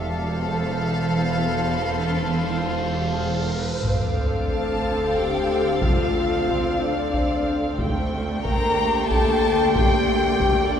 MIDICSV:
0, 0, Header, 1, 12, 480
1, 0, Start_track
1, 0, Tempo, 676437
1, 1263, Time_signature, 3, 2, 24, 8
1, 3192, Tempo, 659341
1, 6072, Tempo, 647948
1, 7807, End_track
2, 0, Start_track
2, 0, Title_t, "Violin section"
2, 0, Program_c, 0, 48
2, 0, Note_on_c, 0, 81, 37
2, 307, Note_on_c, 0, 83, 39
2, 787, Note_on_c, 0, 84, 31
2, 1911, Note_off_c, 0, 83, 0
2, 1911, Note_off_c, 0, 84, 0
2, 1911, Note_on_c, 0, 84, 39
2, 2443, Note_off_c, 0, 84, 0
2, 2446, Note_off_c, 0, 81, 0
2, 2719, Note_on_c, 0, 86, 27
2, 3197, Note_on_c, 0, 93, 29
2, 5322, Note_off_c, 0, 93, 0
2, 5323, Note_off_c, 0, 86, 0
2, 5594, Note_on_c, 0, 79, 31
2, 5594, Note_on_c, 0, 85, 30
2, 6077, Note_on_c, 0, 84, 35
2, 7246, Note_off_c, 0, 85, 0
2, 7670, Note_off_c, 0, 84, 0
2, 7670, Note_on_c, 0, 85, 35
2, 7807, Note_off_c, 0, 79, 0
2, 7807, Note_off_c, 0, 85, 0
2, 7807, End_track
3, 0, Start_track
3, 0, Title_t, "Violin section"
3, 0, Program_c, 1, 48
3, 0, Note_on_c, 1, 69, 56
3, 0, Note_on_c, 1, 77, 49
3, 2536, Note_off_c, 1, 69, 0
3, 2537, Note_off_c, 1, 77, 0
3, 3192, Note_on_c, 1, 81, 46
3, 3643, Note_off_c, 1, 81, 0
3, 3668, Note_on_c, 1, 79, 43
3, 4148, Note_off_c, 1, 79, 0
3, 4148, Note_on_c, 1, 77, 46
3, 4853, Note_off_c, 1, 77, 0
3, 4863, Note_on_c, 1, 74, 44
3, 5586, Note_off_c, 1, 74, 0
3, 6071, Note_on_c, 1, 82, 53
3, 6524, Note_off_c, 1, 82, 0
3, 6552, Note_on_c, 1, 81, 58
3, 7031, Note_on_c, 1, 79, 61
3, 7034, Note_off_c, 1, 81, 0
3, 7732, Note_off_c, 1, 79, 0
3, 7745, Note_on_c, 1, 74, 55
3, 7807, Note_off_c, 1, 74, 0
3, 7807, End_track
4, 0, Start_track
4, 0, Title_t, "Violin section"
4, 0, Program_c, 2, 48
4, 2714, Note_on_c, 2, 77, 32
4, 5560, Note_off_c, 2, 77, 0
4, 5585, Note_on_c, 2, 79, 40
4, 7807, Note_off_c, 2, 79, 0
4, 7807, End_track
5, 0, Start_track
5, 0, Title_t, "Ambient pad"
5, 0, Program_c, 3, 92
5, 0, Note_on_c, 3, 69, 50
5, 0, Note_on_c, 3, 72, 45
5, 0, Note_on_c, 3, 77, 48
5, 2701, Note_off_c, 3, 72, 0
5, 2702, Note_off_c, 3, 77, 0
5, 2703, Note_off_c, 3, 69, 0
5, 2709, Note_on_c, 3, 72, 48
5, 2710, Note_on_c, 3, 77, 48
5, 2711, Note_on_c, 3, 69, 45
5, 5558, Note_off_c, 3, 72, 0
5, 5559, Note_off_c, 3, 69, 0
5, 5559, Note_off_c, 3, 77, 0
5, 5587, Note_on_c, 3, 74, 53
5, 5590, Note_on_c, 3, 79, 48
5, 5592, Note_on_c, 3, 67, 43
5, 7807, Note_off_c, 3, 67, 0
5, 7807, Note_off_c, 3, 74, 0
5, 7807, Note_off_c, 3, 79, 0
5, 7807, End_track
6, 0, Start_track
6, 0, Title_t, "French horn section"
6, 0, Program_c, 4, 60
6, 3198, Note_on_c, 4, 69, 49
6, 3646, Note_off_c, 4, 69, 0
6, 3681, Note_on_c, 4, 67, 55
6, 4151, Note_on_c, 4, 65, 46
6, 4155, Note_off_c, 4, 67, 0
6, 4854, Note_off_c, 4, 65, 0
6, 4865, Note_on_c, 4, 62, 45
6, 5586, Note_off_c, 4, 62, 0
6, 6067, Note_on_c, 4, 70, 59
6, 6522, Note_off_c, 4, 70, 0
6, 6549, Note_on_c, 4, 69, 70
6, 7032, Note_off_c, 4, 69, 0
6, 7033, Note_on_c, 4, 67, 68
6, 7733, Note_off_c, 4, 67, 0
6, 7740, Note_on_c, 4, 62, 60
6, 7807, Note_off_c, 4, 62, 0
6, 7807, End_track
7, 0, Start_track
7, 0, Title_t, "Viola section"
7, 0, Program_c, 5, 48
7, 2713, Note_on_c, 5, 60, 35
7, 2713, Note_on_c, 5, 69, 37
7, 5560, Note_off_c, 5, 69, 0
7, 5589, Note_on_c, 5, 57, 41
7, 6040, Note_off_c, 5, 60, 0
7, 6069, Note_on_c, 5, 58, 45
7, 7807, Note_off_c, 5, 57, 0
7, 7807, Note_off_c, 5, 58, 0
7, 7807, End_track
8, 0, Start_track
8, 0, Title_t, "Cello section"
8, 0, Program_c, 6, 48
8, 0, Note_on_c, 6, 40, 55
8, 2539, Note_off_c, 6, 40, 0
8, 2717, Note_on_c, 6, 38, 39
8, 5562, Note_off_c, 6, 38, 0
8, 5589, Note_on_c, 6, 38, 51
8, 7807, Note_off_c, 6, 38, 0
8, 7807, End_track
9, 0, Start_track
9, 0, Title_t, "Double bass section"
9, 0, Program_c, 7, 48
9, 0, Note_on_c, 7, 28, 54
9, 2536, Note_off_c, 7, 28, 0
9, 2708, Note_on_c, 7, 38, 37
9, 5558, Note_off_c, 7, 38, 0
9, 5587, Note_on_c, 7, 38, 48
9, 7807, Note_off_c, 7, 38, 0
9, 7807, End_track
10, 0, Start_track
10, 0, Title_t, "Riser"
10, 0, Program_c, 8, 103
10, 0, Note_on_c, 8, 60, 56
10, 2712, Note_off_c, 8, 60, 0
10, 7807, End_track
11, 0, Start_track
11, 0, Title_t, "Sub drop"
11, 0, Program_c, 10, 103
11, 2712, Note_on_c, 10, 60, 42
11, 4151, Note_off_c, 10, 60, 0
11, 7807, End_track
12, 0, Start_track
12, 0, Title_t, "Taiko and cinematic ensemble drums"
12, 2714, Note_on_c, 9, 41, 44
12, 2785, Note_off_c, 9, 41, 0
12, 3438, Note_on_c, 9, 41, 27
12, 3510, Note_off_c, 9, 41, 0
12, 4152, Note_on_c, 9, 41, 71
12, 4225, Note_off_c, 9, 41, 0
12, 4632, Note_on_c, 9, 41, 61
12, 4704, Note_off_c, 9, 41, 0
12, 5108, Note_on_c, 9, 41, 54
12, 5181, Note_off_c, 9, 41, 0
12, 5586, Note_on_c, 9, 41, 69
12, 5659, Note_off_c, 9, 41, 0
12, 6070, Note_on_c, 9, 41, 63
12, 6144, Note_off_c, 9, 41, 0
12, 6554, Note_on_c, 9, 41, 61
12, 6628, Note_off_c, 9, 41, 0
12, 7036, Note_on_c, 9, 41, 72
12, 7110, Note_off_c, 9, 41, 0
12, 7512, Note_on_c, 9, 41, 70
12, 7586, Note_off_c, 9, 41, 0
12, 7807, End_track
0, 0, End_of_file